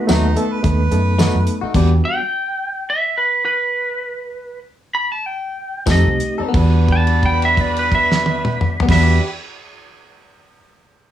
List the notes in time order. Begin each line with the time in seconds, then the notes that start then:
Already playing: B4
0.07 D#2 F#3 A3 B3 D#4 F#4, snare, closed hi-hat, tambourine
0.36 A3 B3 D#4 A4, closed hi-hat
0.53 B4
0.63 D#2 A3 B3 D#4 A4 B4, kick, closed hi-hat
0.91 F#2 A3 B3 D#4 A4, closed hi-hat
1.18 F#3 A3 B3 D#4 F#4 A4, snare, closed hi-hat, tambourine
1.35 F#2
1.47 closed hi-hat
1.61 A3 D#4 F#4, muted fingered electric bass stroke
1.74 E2 G3 B3 D4 F#4 G4, kick, closed hi-hat, crash
2.05 G5
2.90 E5
3.18 B4
3.45 B4
4.95 B5
5.12 A5
5.26 G5
5.86 F2 F3 A3 C4 D#4 G4 A4, kick, snare, closed hi-hat, tambourine
5.92 D#5
6.05 C2
6.20 closed hi-hat
6.38 C4 D#4 A4, muted fingered electric bass stroke
6.49 G3 B3
6.53 E2 B3 D4 F#4 B4, kick, crash
6.60 D4
6.88 kick, crash
6.92 A5
7.07 crash
7.23 G5, kick, crash
7.42 E5, crash
7.57 D5, kick, crash
7.76 B4, crash
7.92 E5, kick, crash
8.12 snare
8.26 high tom
8.45 mid tom
8.61 mid tom
8.80 B3, floor tom
8.85 E2 G3 B3 D4, kick, crash
8.90 F#4 B4 E5, snare
8.94 D4
9.03 G4